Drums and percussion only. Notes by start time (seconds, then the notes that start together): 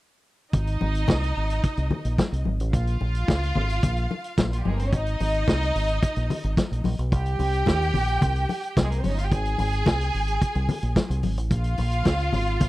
0.53 kick, closed hi-hat
0.67 closed hi-hat
0.81 muted conga
0.95 closed hi-hat
1.08 kick, snare, closed hi-hat, high conga
1.24 closed hi-hat
1.50 closed hi-hat
1.63 kick, closed hi-hat
1.77 closed hi-hat
1.91 muted conga, low conga
2.05 closed hi-hat
2.18 kick, snare, closed hi-hat, high conga
2.33 closed hi-hat
2.45 high conga
2.60 closed hi-hat
2.73 kick, closed hi-hat
2.87 closed hi-hat
3.01 muted conga
3.15 closed hi-hat
3.28 kick, snare, closed hi-hat, high conga
3.43 closed hi-hat
3.56 low conga
3.69 closed hi-hat
3.83 kick, closed hi-hat, low conga
3.97 closed hi-hat
4.11 muted conga
4.24 closed hi-hat
4.38 kick, snare, closed hi-hat, high conga
4.53 closed hi-hat
4.65 high conga
4.79 closed hi-hat
4.93 kick, closed hi-hat
5.06 closed hi-hat
5.20 open hi-hat, muted conga
5.34 closed hi-hat
5.47 kick, snare, closed hi-hat, high conga
5.63 closed hi-hat
5.76 open hi-hat
5.89 closed hi-hat
6.03 kick, closed hi-hat
6.16 closed hi-hat
6.30 open hi-hat, muted conga, low conga
6.44 closed hi-hat
6.57 kick, snare, closed hi-hat, high conga
6.73 closed hi-hat
6.84 open hi-hat, high conga
6.99 closed hi-hat
7.12 kick, closed hi-hat
7.26 closed hi-hat
7.39 open hi-hat, muted conga
7.54 closed hi-hat
7.66 kick, snare, closed hi-hat, high conga
7.82 closed hi-hat
7.94 open hi-hat, low conga
8.08 closed hi-hat
8.21 kick, closed hi-hat, muted conga, low conga
8.36 closed hi-hat
8.49 open hi-hat, muted conga
8.63 closed hi-hat
8.77 kick, snare, closed hi-hat, high conga
8.92 closed hi-hat
9.04 open hi-hat, high conga
9.19 closed hi-hat
9.32 kick, closed hi-hat
9.45 closed hi-hat
9.58 open hi-hat, muted conga
9.73 closed hi-hat
9.86 kick, snare, closed hi-hat, high conga
10.01 closed hi-hat
10.14 open hi-hat
10.28 closed hi-hat
10.42 kick, closed hi-hat
10.55 closed hi-hat
10.69 open hi-hat, muted conga, low conga
10.83 closed hi-hat
10.96 kick, snare, closed hi-hat, high conga
11.11 closed hi-hat
11.23 open hi-hat, high conga
11.37 closed hi-hat
11.51 kick, closed hi-hat
11.64 closed hi-hat
11.78 open hi-hat, muted conga
11.92 closed hi-hat
12.05 kick, snare, closed hi-hat, high conga
12.20 closed hi-hat
12.33 open hi-hat, low conga
12.47 closed hi-hat
12.60 kick, closed hi-hat, low conga